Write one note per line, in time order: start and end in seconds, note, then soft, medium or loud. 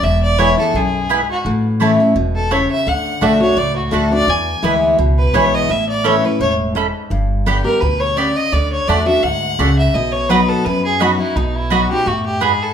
0.03 0.53 E1 medium
0.03 0.71 E2 medium
0.03 0.22 E5 medium
0.23 0.40 D5 medium
0.38 0.57 E3 medium
0.38 0.57 G#3 medium
0.38 0.49 B3 medium
0.38 0.58 B3 medium
0.38 0.49 E4 medium
0.38 0.56 E4 loud
0.38 0.49 B4 medium
0.38 0.58 C#5 loud
0.38 0.49 G#5 medium
0.58 0.75 B3 medium
0.58 0.74 E4 medium
0.58 0.77 A4 medium
0.73 1.24 B1 medium
0.73 1.09 F#2 medium
0.73 1.29 G#4 medium
1.09 1.44 G#2 medium
1.09 1.19 B3 medium
1.09 1.20 E4 medium
1.09 1.20 B4 medium
1.09 1.20 G#5 loud
1.30 1.45 F#4 medium
1.45 1.95 A1 loud
1.45 2.13 A2 medium
1.80 1.99 E3 medium
1.80 1.90 A3 medium
1.80 1.99 A3 loud
1.80 1.99 C#4 medium
1.80 1.90 E4 medium
1.80 1.99 E4 medium
1.80 1.90 C#5 medium
1.80 1.91 A5 medium
2.00 2.16 C#4 medium
2.00 2.16 E4 medium
2.15 2.65 E1 medium
2.15 2.50 B2 medium
2.35 2.53 A4 medium
2.51 2.85 C#3 medium
2.51 2.61 A3 medium
2.51 2.61 E4 medium
2.51 2.61 C#5 medium
2.51 2.71 C#5 medium
2.51 2.61 A5 medium
2.71 2.89 E5 loud
2.87 3.12 D2 medium
2.87 3.20 D3 medium
2.87 3.25 F#5 medium
3.21 3.52 B1 medium
3.21 3.40 D3 medium
3.21 3.31 A3 medium
3.21 3.40 A3 medium
3.21 3.40 D4 loud
3.21 3.32 F#4 medium
3.21 3.39 F#4 loud
3.21 3.32 D5 loud
3.21 3.41 E5 medium
3.21 3.32 A5 medium
3.40 3.57 D4 medium
3.40 3.56 F#4 medium
3.40 3.59 C#5 medium
3.57 3.87 C#2 medium
3.57 4.25 A2 medium
3.57 3.75 D5 loud
3.76 3.95 F#4 soft
3.91 4.23 D2 medium
3.91 4.10 D3 medium
3.91 4.10 A3 medium
3.91 4.02 A3 medium
3.91 4.11 D4 loud
3.91 4.10 F#4 medium
3.91 4.03 F#4 medium
3.91 4.12 A4 medium
3.91 4.03 D5 medium
3.91 4.03 A5 medium
4.11 4.28 D4 medium
4.11 4.27 F#4 medium
4.11 4.31 D5 loud
4.27 4.53 E2 loud
4.27 4.96 E2 medium
4.27 4.83 G#5 medium
4.62 4.93 D2 medium
4.62 4.97 E3 medium
4.62 4.97 G#3 medium
4.62 4.73 B3 medium
4.62 4.97 B3 medium
4.62 4.73 E4 medium
4.62 4.97 E4 medium
4.62 4.74 B4 medium
4.62 4.74 G#5 loud
4.99 5.29 C#2 medium
4.99 5.66 B2 medium
5.18 5.36 B4 medium
5.34 5.64 B1 medium
5.34 5.68 E3 medium
5.34 5.68 G#3 loud
5.34 5.44 B3 medium
5.34 5.69 B3 medium
5.34 5.44 E4 medium
5.34 5.69 E4 medium
5.34 5.44 B4 medium
5.34 5.56 C#5 medium
5.34 5.44 G#5 medium
5.54 5.72 D#5 loud
5.69 6.19 A1 medium
5.69 6.37 A2 medium
5.69 5.88 E5 medium
5.89 6.07 D5 medium
6.04 6.23 E3 medium
6.04 6.24 B3 medium
6.04 6.14 C#4 medium
6.04 6.24 C#4 loud
6.04 6.23 E4 medium
6.04 6.15 A4 medium
6.04 6.26 C#5 medium
6.04 6.15 E5 medium
6.04 6.15 B5 medium
6.25 6.41 C#4 medium
6.25 6.40 E4 medium
6.25 6.40 B4 medium
6.40 6.90 E1 medium
6.40 6.74 A2 medium
6.40 6.52 C#5 medium
6.75 7.09 G#2 medium
6.75 6.86 C#4 medium
6.75 6.86 A4 medium
6.75 6.86 E5 medium
6.75 6.86 B5 loud
7.10 7.61 G1 loud
7.10 7.79 G2 medium
7.46 7.65 D3 medium
7.46 7.65 G3 loud
7.46 7.56 B3 medium
7.46 7.65 B3 medium
7.46 7.57 G4 medium
7.46 7.63 G4 loud
7.46 7.57 D5 medium
7.46 7.57 G5 medium
7.64 7.82 B3 soft
7.64 7.81 G4 medium
7.64 7.82 A#4 medium
7.81 8.32 D2 medium
7.81 8.16 B2 medium
7.81 8.01 B4 medium
8.00 8.18 C#5 medium
8.17 8.51 C#3 medium
8.17 8.27 B3 medium
8.17 8.27 G4 medium
8.17 8.38 D5 medium
8.17 8.28 D5 medium
8.17 8.28 G5 medium
8.36 8.54 D#5 loud
8.52 8.77 D2 medium
8.52 8.86 D3 medium
8.52 8.72 D5 medium
8.72 8.90 C#5 medium
8.87 9.18 E2 medium
8.87 9.06 D3 medium
8.87 8.98 A3 medium
8.87 9.07 A3 medium
8.87 9.07 D4 loud
8.87 8.98 F#4 medium
8.87 9.05 F#4 medium
8.87 9.07 D5 medium
8.87 8.98 D5 loud
8.87 8.99 A5 loud
9.06 9.24 D4 soft
9.06 9.22 F#4 medium
9.06 9.24 E5 medium
9.23 9.54 D2 medium
9.23 9.57 G#2 medium
9.23 9.78 F#5 loud
9.59 9.89 C#2 medium
9.59 9.93 C#3 medium
9.59 9.69 A3 medium
9.59 9.69 F#4 medium
9.59 9.69 D5 medium
9.59 9.69 A5 loud
9.78 9.96 E5 medium
9.94 10.44 B1 loud
9.94 10.62 B2 medium
9.94 10.13 D#5 medium
10.12 10.31 C#5 medium
10.29 10.63 F#3 loud
10.29 10.40 B3 medium
10.29 10.64 B3 medium
10.29 10.64 D#4 loud
10.29 10.40 F#4 loud
10.29 10.64 F#4 medium
10.29 10.50 B4 medium
10.29 10.40 D#5 medium
10.29 10.40 B5 loud
10.49 10.66 A4 medium
10.65 11.15 F#2 medium
10.65 11.33 F#2 medium
10.65 10.84 B4 loud
10.85 11.03 G#4 medium
11.00 11.19 F#3 medium
11.00 11.10 B3 medium
11.00 11.19 B3 medium
11.00 11.20 D#4 medium
11.00 11.10 F#4 medium
11.00 11.18 F#4 medium
11.00 11.10 D#5 loud
11.00 11.11 B5 loud
11.19 11.36 D#4 soft
11.19 11.37 E4 medium
11.19 11.35 F#4 medium
11.36 11.86 B1 loud
11.36 12.04 B2 medium
11.36 11.57 D#4 medium
11.55 11.73 E4 medium
11.70 11.89 F#3 medium
11.70 11.81 B3 medium
11.70 11.90 B3 medium
11.70 11.90 D#4 medium
11.70 11.81 F#4 medium
11.70 11.90 F#4 medium
11.70 11.90 F#4 loud
11.70 11.81 D#5 medium
11.70 11.81 B5 medium
11.90 12.07 D#4 soft
11.90 12.07 F#4 medium
11.90 12.09 G4 loud
12.06 12.56 F#2 medium
12.06 12.40 A2 medium
12.06 12.25 F#4 medium
12.26 12.43 G4 medium
12.41 12.73 G#2 medium
12.41 12.51 B3 medium
12.41 12.51 F#4 medium
12.41 12.63 G#4 medium
12.41 12.52 D#5 medium
12.41 12.52 B5 medium
12.62 12.73 A4 medium